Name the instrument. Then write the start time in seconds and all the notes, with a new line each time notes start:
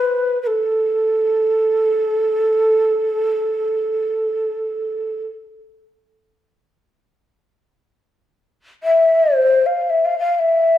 shakuhachi
Already playing: B4
0.42 B4
0.47 A4
8.83 E5
9.37 C5
9.66 F5
9.90 E5
10.05 F5
10.19 F5
10.35 F5
10.39 E5